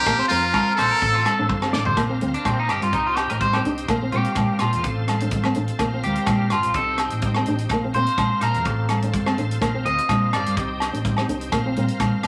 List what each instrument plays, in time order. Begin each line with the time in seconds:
Already playing: tonewheel organ C4, muted trumpet G4, clean electric guitar A#4
0.06 fingered electric bass A#1, nylon-string guitar A#3, tonewheel organ F4 A#4, kick, cross-stick, muted conga, low agogo
0.18 nylon-string guitar C4, clean electric guitar C5
0.28 fingered electric bass F2, nylon-string guitar C4, muted trumpet F4, clean electric guitar A#4, closed hi-hat, muted conga
0.54 clean electric guitar A#4, kick, cross-stick, high conga, low agogo
0.75 fingered electric bass A#1, muted trumpet A4, clean electric guitar C5, cross-stick, closed hi-hat, low conga, low agogo
0.91 clean electric guitar A#4
1.02 fingered electric bass A1, clean electric guitar A4, tonewheel organ A4, kick, muted conga
1.15 clean electric guitar F4
1.25 clean electric guitar A4, cross-stick, closed hi-hat, high conga, low agogo
1.39 fingered electric bass A1, nylon-string guitar D4
1.49 fingered electric bass G1, muted clean electric guitar stroke, kick, high conga
1.62 nylon-string guitar C4, cross-stick, high conga, low agogo
1.73 fingered electric bass A1, nylon-string guitar D4, clean electric guitar D5, snare, low conga
1.85 clean electric guitar C5, floor tom, low conga
1.97 fingered electric bass A#1, nylon-string guitar A#3, tonewheel organ C4 F4 A#4, kick, cross-stick, closed hi-hat, muted conga, low agogo
2.09 nylon-string guitar C4
2.21 fingered electric bass D2, nylon-string guitar C4, closed hi-hat, muted conga, high conga
2.34 clean electric guitar D4, closed hi-hat
2.45 fingered electric bass A#2, clean electric guitar C4, kick, cross-stick, closed hi-hat, high conga, low agogo
2.59 clean electric guitar D#4
2.69 fingered electric bass G1, clean electric guitar G4, cross-stick, closed hi-hat, low agogo
2.82 fingered electric bass G2, clean electric guitar F4, closed hi-hat
2.93 fingered electric bass C2, clean electric guitar D#4, tonewheel organ D#4 G4, kick, closed hi-hat, muted conga
3.07 clean electric guitar F4
3.17 clean electric guitar G4, cross-stick, closed hi-hat, low agogo
3.30 fingered electric bass A1, clean electric guitar A#4, muted nylon-string guitar stroke, closed hi-hat
3.41 clean electric guitar C5, kick, closed hi-hat, high conga
3.53 nylon-string guitar C4, clean electric guitar G4, cross-stick, low agogo
3.64 fingered electric bass C2, nylon-string guitar D4, closed hi-hat
3.78 closed hi-hat
3.88 fingered electric bass A#1, nylon-string guitar A#3, tonewheel organ C4 F4 A#4, kick, cross-stick, closed hi-hat, muted conga, low agogo
4.02 nylon-string guitar C4
4.12 fingered electric bass A#2, nylon-string guitar C4, clean electric guitar G4, closed hi-hat, muted conga, high conga
4.25 closed hi-hat
4.35 fingered electric bass A#2, kick, cross-stick, closed hi-hat, high conga, low conga, low agogo
4.59 fingered electric bass A#2, clean electric guitar F4, cross-stick, closed hi-hat, low agogo
4.73 fingered electric bass F2, closed hi-hat
4.84 fingered electric bass A1, tonewheel organ C4 A4, muted clean electric guitar stroke, kick, closed hi-hat
5.08 cross-stick, closed hi-hat, high conga, low agogo
5.20 nylon-string guitar D4, closed hi-hat
5.31 kick, closed hi-hat, high conga, low conga
5.44 nylon-string guitar C4, cross-stick, low agogo
5.55 fingered electric bass A1, nylon-string guitar D4, closed hi-hat, muted conga
5.68 closed hi-hat
5.79 fingered electric bass A#1, nylon-string guitar A#3, tonewheel organ A#4, kick, cross-stick, closed hi-hat, muted conga, low agogo
5.94 nylon-string guitar C4
6.03 fingered electric bass D2, clean electric guitar G4, closed hi-hat, muted conga, high conga
6.15 closed hi-hat
6.26 fingered electric bass A#2, kick, cross-stick, closed hi-hat, high conga, low agogo
6.50 fingered electric bass G1, clean electric guitar F4, cross-stick, closed hi-hat, low agogo
6.63 fingered electric bass A#1, closed hi-hat
6.74 fingered electric bass C2, tonewheel organ C4 D#4 G4, clean electric guitar A4, kick, closed hi-hat, muted conga
6.98 cross-stick, closed hi-hat, low agogo
7.10 fingered electric bass A1, closed hi-hat
7.22 kick, closed hi-hat, high conga
7.34 nylon-string guitar C4, cross-stick, low agogo
7.46 fingered electric bass A1, nylon-string guitar D4, closed hi-hat
7.58 closed hi-hat
7.69 fingered electric bass A#1, nylon-string guitar A#3, tonewheel organ F4 A#4, kick, cross-stick, closed hi-hat, muted conga, low agogo
7.84 nylon-string guitar C4
7.94 fingered electric bass A#2, nylon-string guitar C4, clean electric guitar C5, closed hi-hat, muted conga, high conga
8.06 closed hi-hat
8.18 fingered electric bass A#2, kick, cross-stick, closed hi-hat, high conga, low conga, low agogo
8.41 fingered electric bass A#2, clean electric guitar A#4, cross-stick, closed hi-hat, low agogo
8.54 fingered electric bass F2, closed hi-hat
8.65 fingered electric bass A1, tonewheel organ A4, muted clean electric guitar stroke, kick, closed hi-hat, muted conga
8.89 cross-stick, closed hi-hat, high conga, low agogo
9.02 nylon-string guitar D4, closed hi-hat
9.14 fingered electric bass G1, kick, closed hi-hat, high conga, low conga
9.26 nylon-string guitar C4, cross-stick, low agogo
9.38 fingered electric bass A1, nylon-string guitar D4, closed hi-hat
9.51 closed hi-hat
9.61 fingered electric bass A#1, nylon-string guitar A#3, tonewheel organ C4 F4 A#4, kick, cross-stick, closed hi-hat, muted conga, low agogo
9.74 nylon-string guitar C4
9.85 fingered electric bass D2, nylon-string guitar C4, clean electric guitar D#5, closed hi-hat, muted conga
9.98 closed hi-hat
10.09 fingered electric bass A#2, kick, cross-stick, closed hi-hat, high conga, low agogo
10.33 fingered electric bass G1, clean electric guitar D5, cross-stick, closed hi-hat, low agogo
10.46 fingered electric bass G2, closed hi-hat
10.57 fingered electric bass C2, tonewheel organ D#4 G4, muted clean electric guitar stroke, kick, closed hi-hat
10.80 cross-stick, closed hi-hat, low agogo
10.93 fingered electric bass A1, nylon-string guitar D4, closed hi-hat
11.05 kick, closed hi-hat, high conga
11.17 nylon-string guitar C4, cross-stick, low agogo
11.28 fingered electric bass C2, nylon-string guitar D4, closed hi-hat
11.41 closed hi-hat
11.52 fingered electric bass A#1, nylon-string guitar A#3, tonewheel organ F4 A#4, kick, cross-stick, closed hi-hat, muted conga, low agogo
11.66 nylon-string guitar C4
11.76 fingered electric bass A#2, nylon-string guitar C4, closed hi-hat, muted conga, high conga
11.88 closed hi-hat
12.00 fingered electric bass A#2, kick, cross-stick, closed hi-hat, high conga, low conga, low agogo
12.23 cross-stick, closed hi-hat, low agogo